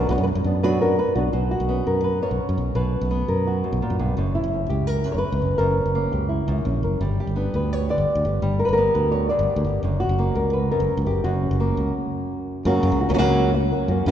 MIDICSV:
0, 0, Header, 1, 4, 480
1, 0, Start_track
1, 0, Tempo, 353565
1, 1808, Time_signature, 4, 2, 24, 8
1, 19156, End_track
2, 0, Start_track
2, 0, Title_t, "Nylon-string guitar"
2, 0, Program_c, 0, 24
2, 128, Note_on_c, 0, 66, 56
2, 141, Note_on_c, 0, 62, 50
2, 142, Note_on_c, 0, 71, 92
2, 152, Note_on_c, 0, 59, 46
2, 206, Note_off_c, 0, 71, 0
2, 212, Note_on_c, 0, 73, 77
2, 310, Note_off_c, 0, 73, 0
2, 319, Note_on_c, 0, 71, 95
2, 357, Note_off_c, 0, 66, 0
2, 360, Note_off_c, 0, 59, 0
2, 364, Note_off_c, 0, 62, 0
2, 370, Note_off_c, 0, 71, 0
2, 616, Note_on_c, 0, 62, 56
2, 631, Note_on_c, 0, 59, 46
2, 841, Note_off_c, 0, 62, 0
2, 849, Note_off_c, 0, 59, 0
2, 857, Note_on_c, 0, 47, 80
2, 859, Note_on_c, 0, 71, 90
2, 861, Note_on_c, 0, 54, 89
2, 863, Note_on_c, 0, 59, 88
2, 869, Note_on_c, 0, 62, 102
2, 872, Note_on_c, 0, 66, 94
2, 1082, Note_off_c, 0, 47, 0
2, 1084, Note_off_c, 0, 54, 0
2, 1085, Note_off_c, 0, 59, 0
2, 1085, Note_off_c, 0, 66, 0
2, 1088, Note_off_c, 0, 62, 0
2, 1102, Note_on_c, 0, 66, 58
2, 1103, Note_on_c, 0, 70, 83
2, 1114, Note_on_c, 0, 62, 51
2, 1127, Note_on_c, 0, 59, 48
2, 1324, Note_off_c, 0, 71, 0
2, 1325, Note_off_c, 0, 66, 0
2, 1327, Note_off_c, 0, 59, 0
2, 1331, Note_off_c, 0, 62, 0
2, 1340, Note_on_c, 0, 71, 98
2, 1566, Note_off_c, 0, 71, 0
2, 1571, Note_on_c, 0, 66, 54
2, 1577, Note_off_c, 0, 70, 0
2, 1583, Note_on_c, 0, 62, 49
2, 1595, Note_on_c, 0, 59, 43
2, 1794, Note_off_c, 0, 66, 0
2, 1802, Note_on_c, 0, 47, 66
2, 1806, Note_off_c, 0, 62, 0
2, 1810, Note_on_c, 0, 66, 42
2, 1812, Note_off_c, 0, 59, 0
2, 2045, Note_off_c, 0, 66, 0
2, 2051, Note_on_c, 0, 66, 86
2, 2292, Note_on_c, 0, 59, 58
2, 2300, Note_on_c, 0, 61, 45
2, 2530, Note_off_c, 0, 61, 0
2, 2536, Note_on_c, 0, 70, 70
2, 2761, Note_off_c, 0, 66, 0
2, 2767, Note_on_c, 0, 71, 78
2, 3008, Note_off_c, 0, 47, 0
2, 3010, Note_off_c, 0, 71, 0
2, 3018, Note_on_c, 0, 42, 51
2, 3023, Note_on_c, 0, 73, 95
2, 3255, Note_off_c, 0, 70, 0
2, 3260, Note_on_c, 0, 61, 46
2, 3706, Note_off_c, 0, 59, 0
2, 3734, Note_off_c, 0, 73, 0
2, 3736, Note_on_c, 0, 47, 65
2, 3738, Note_off_c, 0, 42, 0
2, 3740, Note_on_c, 0, 71, 89
2, 4217, Note_on_c, 0, 59, 62
2, 4456, Note_off_c, 0, 61, 0
2, 4461, Note_on_c, 0, 70, 81
2, 4698, Note_off_c, 0, 71, 0
2, 4714, Note_on_c, 0, 66, 70
2, 4940, Note_off_c, 0, 47, 0
2, 4941, Note_on_c, 0, 42, 60
2, 5180, Note_off_c, 0, 42, 0
2, 5181, Note_off_c, 0, 70, 0
2, 5189, Note_on_c, 0, 46, 64
2, 5417, Note_off_c, 0, 46, 0
2, 5422, Note_on_c, 0, 43, 67
2, 5632, Note_off_c, 0, 59, 0
2, 5662, Note_off_c, 0, 43, 0
2, 5669, Note_off_c, 0, 66, 0
2, 5669, Note_on_c, 0, 42, 65
2, 5680, Note_on_c, 0, 73, 48
2, 5903, Note_on_c, 0, 64, 93
2, 6158, Note_on_c, 0, 61, 43
2, 6369, Note_off_c, 0, 61, 0
2, 6375, Note_on_c, 0, 67, 81
2, 6613, Note_off_c, 0, 67, 0
2, 6613, Note_on_c, 0, 70, 99
2, 6840, Note_off_c, 0, 73, 0
2, 6840, Note_on_c, 0, 71, 92
2, 6847, Note_off_c, 0, 42, 0
2, 6863, Note_on_c, 0, 42, 60
2, 6865, Note_off_c, 0, 64, 0
2, 6944, Note_off_c, 0, 71, 0
2, 6949, Note_on_c, 0, 73, 74
2, 7028, Note_off_c, 0, 73, 0
2, 7034, Note_on_c, 0, 71, 106
2, 7339, Note_off_c, 0, 70, 0
2, 7365, Note_on_c, 0, 61, 46
2, 7568, Note_off_c, 0, 71, 0
2, 7574, Note_on_c, 0, 70, 102
2, 7579, Note_off_c, 0, 42, 0
2, 7596, Note_on_c, 0, 42, 70
2, 7835, Note_off_c, 0, 61, 0
2, 7851, Note_on_c, 0, 61, 41
2, 8074, Note_off_c, 0, 61, 0
2, 8077, Note_on_c, 0, 58, 53
2, 8090, Note_on_c, 0, 61, 45
2, 8305, Note_on_c, 0, 67, 66
2, 8531, Note_off_c, 0, 67, 0
2, 8537, Note_on_c, 0, 64, 62
2, 8779, Note_off_c, 0, 42, 0
2, 8781, Note_off_c, 0, 70, 0
2, 8795, Note_on_c, 0, 42, 61
2, 9025, Note_off_c, 0, 61, 0
2, 9041, Note_on_c, 0, 61, 48
2, 9285, Note_on_c, 0, 70, 46
2, 9484, Note_off_c, 0, 58, 0
2, 9486, Note_off_c, 0, 61, 0
2, 9487, Note_off_c, 0, 70, 0
2, 9502, Note_off_c, 0, 64, 0
2, 9512, Note_off_c, 0, 42, 0
2, 9515, Note_on_c, 0, 55, 66
2, 9529, Note_on_c, 0, 67, 43
2, 9771, Note_off_c, 0, 67, 0
2, 9776, Note_on_c, 0, 67, 90
2, 9989, Note_on_c, 0, 59, 56
2, 9999, Note_on_c, 0, 62, 50
2, 10256, Note_on_c, 0, 71, 84
2, 10491, Note_off_c, 0, 71, 0
2, 10491, Note_on_c, 0, 73, 91
2, 10714, Note_on_c, 0, 50, 59
2, 10719, Note_off_c, 0, 73, 0
2, 10722, Note_off_c, 0, 67, 0
2, 10730, Note_on_c, 0, 74, 98
2, 11203, Note_on_c, 0, 67, 49
2, 11399, Note_off_c, 0, 59, 0
2, 11402, Note_off_c, 0, 50, 0
2, 11402, Note_off_c, 0, 55, 0
2, 11405, Note_off_c, 0, 62, 0
2, 11407, Note_off_c, 0, 67, 0
2, 11433, Note_on_c, 0, 55, 74
2, 11666, Note_on_c, 0, 70, 100
2, 11738, Note_off_c, 0, 74, 0
2, 11743, Note_on_c, 0, 71, 85
2, 11833, Note_off_c, 0, 70, 0
2, 11850, Note_on_c, 0, 70, 106
2, 11913, Note_on_c, 0, 59, 59
2, 12120, Note_off_c, 0, 71, 0
2, 12136, Note_on_c, 0, 71, 71
2, 12371, Note_off_c, 0, 71, 0
2, 12377, Note_on_c, 0, 73, 96
2, 12609, Note_off_c, 0, 73, 0
2, 12615, Note_on_c, 0, 74, 96
2, 12623, Note_off_c, 0, 70, 0
2, 12632, Note_on_c, 0, 50, 63
2, 12889, Note_on_c, 0, 67, 45
2, 13108, Note_off_c, 0, 67, 0
2, 13124, Note_on_c, 0, 67, 51
2, 13320, Note_off_c, 0, 50, 0
2, 13320, Note_off_c, 0, 55, 0
2, 13320, Note_off_c, 0, 59, 0
2, 13326, Note_off_c, 0, 67, 0
2, 13340, Note_off_c, 0, 74, 0
2, 13353, Note_on_c, 0, 42, 72
2, 13363, Note_on_c, 0, 73, 48
2, 13569, Note_off_c, 0, 73, 0
2, 13575, Note_on_c, 0, 66, 94
2, 13828, Note_on_c, 0, 58, 66
2, 14059, Note_on_c, 0, 70, 69
2, 14292, Note_off_c, 0, 66, 0
2, 14297, Note_on_c, 0, 71, 84
2, 14526, Note_off_c, 0, 70, 0
2, 14530, Note_off_c, 0, 42, 0
2, 14540, Note_off_c, 0, 71, 0
2, 14546, Note_on_c, 0, 42, 64
2, 14546, Note_on_c, 0, 70, 91
2, 15022, Note_off_c, 0, 70, 0
2, 15028, Note_on_c, 0, 67, 87
2, 15235, Note_off_c, 0, 58, 0
2, 15248, Note_off_c, 0, 42, 0
2, 15257, Note_on_c, 0, 66, 74
2, 15264, Note_on_c, 0, 42, 70
2, 15265, Note_off_c, 0, 67, 0
2, 15512, Note_on_c, 0, 61, 50
2, 15749, Note_on_c, 0, 58, 59
2, 16195, Note_off_c, 0, 58, 0
2, 17174, Note_off_c, 0, 66, 0
2, 17178, Note_off_c, 0, 61, 0
2, 17181, Note_on_c, 0, 49, 85
2, 17187, Note_on_c, 0, 58, 83
2, 17191, Note_on_c, 0, 54, 90
2, 17194, Note_on_c, 0, 61, 86
2, 17205, Note_on_c, 0, 66, 79
2, 17647, Note_off_c, 0, 49, 0
2, 17647, Note_off_c, 0, 66, 0
2, 17650, Note_off_c, 0, 58, 0
2, 17652, Note_off_c, 0, 54, 0
2, 17654, Note_off_c, 0, 61, 0
2, 17663, Note_on_c, 0, 66, 66
2, 17674, Note_on_c, 0, 61, 56
2, 17687, Note_on_c, 0, 58, 51
2, 17761, Note_off_c, 0, 58, 0
2, 17769, Note_on_c, 0, 54, 66
2, 17770, Note_off_c, 0, 61, 0
2, 17772, Note_off_c, 0, 66, 0
2, 17777, Note_on_c, 0, 58, 58
2, 17787, Note_on_c, 0, 61, 58
2, 17788, Note_on_c, 0, 66, 68
2, 17819, Note_off_c, 0, 54, 0
2, 17824, Note_off_c, 0, 58, 0
2, 17830, Note_off_c, 0, 61, 0
2, 17830, Note_off_c, 0, 66, 0
2, 17836, Note_on_c, 0, 54, 67
2, 17840, Note_on_c, 0, 58, 77
2, 17846, Note_on_c, 0, 61, 91
2, 17846, Note_on_c, 0, 66, 86
2, 17882, Note_off_c, 0, 54, 0
2, 17890, Note_off_c, 0, 58, 0
2, 17890, Note_off_c, 0, 66, 0
2, 17892, Note_off_c, 0, 61, 0
2, 17896, Note_on_c, 0, 49, 94
2, 17898, Note_on_c, 0, 54, 91
2, 17907, Note_on_c, 0, 58, 102
2, 17907, Note_on_c, 0, 66, 107
2, 17909, Note_on_c, 0, 61, 102
2, 18133, Note_off_c, 0, 42, 0
2, 18363, Note_off_c, 0, 49, 0
2, 18364, Note_off_c, 0, 54, 0
2, 18368, Note_off_c, 0, 58, 0
2, 18368, Note_off_c, 0, 66, 0
2, 18369, Note_off_c, 0, 61, 0
2, 18614, Note_on_c, 0, 54, 56
2, 18620, Note_on_c, 0, 58, 57
2, 18626, Note_on_c, 0, 61, 58
2, 18634, Note_on_c, 0, 66, 57
2, 18838, Note_off_c, 0, 66, 0
2, 18841, Note_off_c, 0, 54, 0
2, 18844, Note_off_c, 0, 58, 0
2, 18847, Note_off_c, 0, 61, 0
2, 18854, Note_on_c, 0, 66, 62
2, 18868, Note_on_c, 0, 61, 55
2, 18880, Note_on_c, 0, 58, 50
2, 19081, Note_off_c, 0, 66, 0
2, 19088, Note_off_c, 0, 61, 0
2, 19094, Note_off_c, 0, 58, 0
2, 19101, Note_on_c, 0, 49, 88
2, 19103, Note_on_c, 0, 54, 86
2, 19110, Note_on_c, 0, 58, 88
2, 19114, Note_on_c, 0, 61, 100
2, 19156, Note_off_c, 0, 49, 0
2, 19156, Note_off_c, 0, 54, 0
2, 19156, Note_off_c, 0, 58, 0
2, 19156, Note_off_c, 0, 61, 0
2, 19156, End_track
3, 0, Start_track
3, 0, Title_t, "Fingered electric bass"
3, 0, Program_c, 1, 33
3, 120, Note_on_c, 1, 35, 99
3, 214, Note_off_c, 1, 35, 0
3, 242, Note_on_c, 1, 42, 92
3, 427, Note_off_c, 1, 42, 0
3, 479, Note_on_c, 1, 42, 96
3, 573, Note_off_c, 1, 42, 0
3, 602, Note_on_c, 1, 42, 82
3, 1339, Note_off_c, 1, 42, 0
3, 1568, Note_on_c, 1, 35, 74
3, 1751, Note_off_c, 1, 35, 0
3, 1809, Note_on_c, 1, 35, 72
3, 2085, Note_off_c, 1, 35, 0
3, 2171, Note_on_c, 1, 35, 78
3, 2446, Note_off_c, 1, 35, 0
3, 2534, Note_on_c, 1, 42, 68
3, 2993, Note_off_c, 1, 42, 0
3, 3134, Note_on_c, 1, 35, 65
3, 3225, Note_off_c, 1, 35, 0
3, 3378, Note_on_c, 1, 42, 77
3, 3468, Note_off_c, 1, 42, 0
3, 3497, Note_on_c, 1, 35, 73
3, 3680, Note_off_c, 1, 35, 0
3, 3733, Note_on_c, 1, 35, 74
3, 4009, Note_off_c, 1, 35, 0
3, 4093, Note_on_c, 1, 35, 85
3, 4370, Note_off_c, 1, 35, 0
3, 4457, Note_on_c, 1, 42, 72
3, 4917, Note_off_c, 1, 42, 0
3, 5058, Note_on_c, 1, 35, 72
3, 5150, Note_off_c, 1, 35, 0
3, 5296, Note_on_c, 1, 42, 71
3, 5389, Note_off_c, 1, 42, 0
3, 5422, Note_on_c, 1, 35, 69
3, 5605, Note_off_c, 1, 35, 0
3, 5657, Note_on_c, 1, 30, 76
3, 5934, Note_off_c, 1, 30, 0
3, 6022, Note_on_c, 1, 30, 80
3, 6298, Note_off_c, 1, 30, 0
3, 6383, Note_on_c, 1, 37, 70
3, 6843, Note_off_c, 1, 37, 0
3, 6984, Note_on_c, 1, 30, 67
3, 7076, Note_off_c, 1, 30, 0
3, 7227, Note_on_c, 1, 37, 79
3, 7318, Note_off_c, 1, 37, 0
3, 7354, Note_on_c, 1, 30, 62
3, 7534, Note_off_c, 1, 30, 0
3, 7588, Note_on_c, 1, 30, 85
3, 7863, Note_off_c, 1, 30, 0
3, 7950, Note_on_c, 1, 30, 72
3, 8224, Note_off_c, 1, 30, 0
3, 8316, Note_on_c, 1, 37, 70
3, 8680, Note_off_c, 1, 37, 0
3, 8793, Note_on_c, 1, 37, 82
3, 9006, Note_off_c, 1, 37, 0
3, 9028, Note_on_c, 1, 34, 84
3, 9244, Note_off_c, 1, 34, 0
3, 9271, Note_on_c, 1, 30, 66
3, 9485, Note_off_c, 1, 30, 0
3, 9511, Note_on_c, 1, 31, 82
3, 9785, Note_off_c, 1, 31, 0
3, 9873, Note_on_c, 1, 31, 76
3, 10146, Note_off_c, 1, 31, 0
3, 10234, Note_on_c, 1, 38, 72
3, 10690, Note_off_c, 1, 38, 0
3, 10832, Note_on_c, 1, 31, 71
3, 10922, Note_off_c, 1, 31, 0
3, 11070, Note_on_c, 1, 38, 79
3, 11161, Note_off_c, 1, 38, 0
3, 11197, Note_on_c, 1, 31, 74
3, 11377, Note_off_c, 1, 31, 0
3, 11433, Note_on_c, 1, 31, 81
3, 11706, Note_off_c, 1, 31, 0
3, 11792, Note_on_c, 1, 31, 79
3, 12065, Note_off_c, 1, 31, 0
3, 12148, Note_on_c, 1, 38, 74
3, 12606, Note_off_c, 1, 38, 0
3, 12747, Note_on_c, 1, 31, 82
3, 12838, Note_off_c, 1, 31, 0
3, 12983, Note_on_c, 1, 38, 84
3, 13076, Note_off_c, 1, 38, 0
3, 13094, Note_on_c, 1, 31, 77
3, 13282, Note_off_c, 1, 31, 0
3, 13341, Note_on_c, 1, 30, 83
3, 13618, Note_off_c, 1, 30, 0
3, 13701, Note_on_c, 1, 30, 88
3, 13977, Note_off_c, 1, 30, 0
3, 14056, Note_on_c, 1, 37, 74
3, 14517, Note_off_c, 1, 37, 0
3, 14662, Note_on_c, 1, 30, 80
3, 14754, Note_off_c, 1, 30, 0
3, 14897, Note_on_c, 1, 37, 84
3, 14991, Note_off_c, 1, 37, 0
3, 15020, Note_on_c, 1, 30, 74
3, 15204, Note_off_c, 1, 30, 0
3, 15265, Note_on_c, 1, 30, 92
3, 15539, Note_off_c, 1, 30, 0
3, 15625, Note_on_c, 1, 30, 91
3, 15898, Note_off_c, 1, 30, 0
3, 15982, Note_on_c, 1, 37, 82
3, 16164, Note_off_c, 1, 37, 0
3, 17177, Note_on_c, 1, 42, 96
3, 17360, Note_off_c, 1, 42, 0
3, 17415, Note_on_c, 1, 42, 102
3, 17507, Note_off_c, 1, 42, 0
3, 17536, Note_on_c, 1, 37, 91
3, 17719, Note_off_c, 1, 37, 0
3, 17781, Note_on_c, 1, 37, 107
3, 17870, Note_off_c, 1, 37, 0
3, 17898, Note_on_c, 1, 37, 94
3, 18627, Note_off_c, 1, 37, 0
3, 18847, Note_on_c, 1, 42, 79
3, 19030, Note_off_c, 1, 42, 0
3, 19091, Note_on_c, 1, 42, 100
3, 19156, Note_off_c, 1, 42, 0
3, 19156, End_track
4, 0, Start_track
4, 0, Title_t, "Muted nylon-string guitar strokes"
4, 365, Note_on_c, 9, 29, 66
4, 500, Note_off_c, 9, 29, 0
4, 1337, Note_on_c, 9, 29, 65
4, 1472, Note_off_c, 9, 29, 0
4, 18377, Note_on_c, 9, 29, 76
4, 18513, Note_off_c, 9, 29, 0
4, 19156, End_track
0, 0, End_of_file